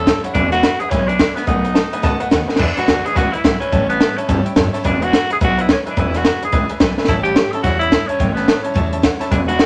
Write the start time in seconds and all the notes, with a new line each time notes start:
Already playing: E2 A4
0.06 E3 G3 C#4 E4 C#5 E5 A5, kick, snare, closed hi-hat
0.23 G3 C#4 E4 C#5 E5 F#5, muted upright bass stroke, closed hi-hat
0.33 E1 E2 B2 E3 G#3 D4 E4 B4 E5 G#5, kick, closed hi-hat
0.51 E3 G#3 D4 E4 F#4 B4 E5 F#5, snare, closed hi-hat
0.63 E3 G#3 D4 B4 E5 B5, snare, closed hi-hat
0.80 E3 G#3 D4 E4 G#4 B4 E5 F#5, muted upright bass stroke, closed hi-hat
0.90 B1 E2 B2 E3 G#3 C#4 D4 E4 B4 E5 G#5, kick, snare, closed hi-hat
1.07 E3 G#3 D4 E4 B4 E5 G#5, closed hi-hat
1.19 E3 G#3 E4 B4 E5 G#5, kick, snare, closed hi-hat
1.34 E3 G#3 B3 D4 E4 B4 E5 G#5, muted upright bass stroke, snare, closed hi-hat
1.46 B1 B2 D#3 A3 B3 D#4 F#4 B4 D#5 F#5, kick, closed hi-hat
1.64 A3 B3 F#4 B4 D#5 F#5, closed hi-hat
1.74 D#3 A3 B3 F#4 B4 D#5 A5, snare, closed hi-hat
1.92 A3 B3 F#4 B4 D#5 G#5, muted upright bass stroke, closed hi-hat
2.02 C#2 B2 D#3 A3 B3 F#4 B4 D#5 A5, kick, snare, closed hi-hat
2.18 A3 B3 F#4 B4 D#5 F#5 G#5, muted upright bass stroke, closed hi-hat
2.30 D#2 D#3 A3 B3 F#4 B4 D#5 F#5 G#5, kick, snare, closed hi-hat
2.48 A3 B3 F#4 B4 D#5 G#5, muted upright bass stroke, snare
2.56 E2 B2 E3 G#3 B4 E5 G#5, kick, snare, crash
2.60 D4 E4
2.76 E3 G#3 D4 E4 F#4 B4 E5 G#5, muted upright bass stroke, snare, closed hi-hat
2.86 D2 E3 G#3 D4 B4 E5 G#5, snare, closed hi-hat
3.05 E3 G#3 D4 E4 G#4 B4 E5 G#5, muted upright bass stroke, closed hi-hat
3.15 C#2 E2 B2 E3 G#3 D4 E4 F#4 B4 E5 G#5, kick, closed hi-hat
3.32 E3 G#3 D4 E4 B4 E5 G#5, muted upright bass stroke, closed hi-hat
3.44 B1 E3 G#3 D4 E4 B4 E5 F#5, kick, snare, closed hi-hat
3.60 G#3 C#4 D4 E4 B4 E5 G#5, muted upright bass stroke, closed hi-hat
3.64 E3
3.72 A1 A2 E3 G3 C#4 E4 C#5 E5 A5, kick, closed hi-hat
3.89 G3 B3 C#4 E4 C#5 E5 A5, closed hi-hat
4.00 E3 G3 C#4 E4 C#5 E5 A5, snare, closed hi-hat
4.17 G3 C#4 E4 C#5 E5 A5, muted upright bass stroke, closed hi-hat
4.28 G1 A2 E3 G3 C#4 E4 C#5 E5 A5, kick, closed hi-hat
4.45 C#4 E4 C#5 E5 G5, closed hi-hat
4.49 G3
4.56 F#1 G3 C#4 E4 C#5 E5 A5, kick, snare, closed hi-hat
4.73 G3 C#4 E4 C#5 E5 A5, snare, closed hi-hat
4.83 E1 E2 B2 E3 G#3 D4 E4 B4 E5 G#5, kick, closed hi-hat
5.00 E3 G#3 D4 E4 F#4 B4 E5 G#5, closed hi-hat
5.12 E3 G#3 B4 E5 G#5, snare, closed hi-hat
5.30 E3 G#3 D4 E4 G#4 B4 E5 G#5, muted upright bass stroke, closed hi-hat
5.40 B1 E2 B2 E3 G#3 D4 E4 F#4 B4 E5 G#5, kick, closed hi-hat
5.57 E3 G#3 D4 E4 B4 E5 F#5, closed hi-hat
5.69 E3 G#3 C#4 B4 E5 G#5, kick, snare, closed hi-hat
5.85 E3 G#3 D4 E4 B4 E5 G#5, muted upright bass stroke, closed hi-hat
5.90 D4
5.96 E1 E2 B2 E3 G#3 D4 E4 B4 E5 G#5, kick, closed hi-hat
6.13 E3 G#3 D4 E4 F#4 B4 E5 G#5, snare, closed hi-hat
6.25 E3 G#3 B4 E5 G#5, snare, closed hi-hat
6.41 E3 G#3 D4 E4 G#4 B4 E5 G#5, muted upright bass stroke, closed hi-hat
6.52 C#2 E2 B2 E3 G#3 D4 E4 B4 E5 G#5, kick, closed hi-hat
6.69 E3 G#3 D4 E4 B4 E5 G#5, muted upright bass stroke, closed hi-hat
6.80 B1 E3 G#3 D4 E4 B4 E5 G#5, kick, snare, closed hi-hat
6.97 E3 G#3 D4 E4 B4 E5 G#5, muted upright bass stroke, snare
7.05 A1 E4 C#5, kick, snare, closed hi-hat
7.09 A2 E3 G3 C#4 E4 E5 A5
7.23 C#4 E4 G4 C#5 E5 A5, closed hi-hat
7.28 G3
7.36 E3 G3 C#4 C#5 E5 G5, snare, closed hi-hat
7.52 C#4 E4 A4 C#5 E5 A5, muted upright bass stroke, closed hi-hat
7.56 G3
7.63 E2 A2 E3 G3 C#4 E4 F#4 C#5 E5 F#5, kick, snare, closed hi-hat
7.79 C#4 E4 C#5 E5 B5, closed hi-hat
7.83 G3
7.91 E3 G3 C#4 E4 C#5 E5 A5, kick, snare, closed hi-hat
8.07 C#4 E4 C#5 E5 A5, muted upright bass stroke, closed hi-hat
8.12 G3
8.19 A1 A2 E3 G3 C#4 E4 C#5 E5 G5, kick, closed hi-hat
8.34 B3 E4 C#5 E5 A5, snare, closed hi-hat
8.38 G3 C#4
8.46 E3 G3 C#4 E4 C#5 E5 A5, snare, closed hi-hat
8.62 G3 C#4 E4 C#5 E5 A5, muted upright bass stroke, closed hi-hat
8.74 E2 A2 E3 G3 C#4 E4 C#5 E5 A5, kick, closed hi-hat
8.90 G3 C#4 E4 C#5 E5 A5, closed hi-hat
9.02 E3 G3 C#4 E4 C#5 E5 F#5, kick, snare, closed hi-hat
9.19 G3 C#4 E4 C#5 E5 A5, muted upright bass stroke, snare, closed hi-hat
9.31 E1 E2 B2 E3 G#3 D4 E4 B4 E5 G#5, kick, closed hi-hat
9.48 E3 G#3 D4 E4 F#4 B4 E5 G#5, closed hi-hat
9.59 E3 G#3 D4 B4 E5 G#5, snare, closed hi-hat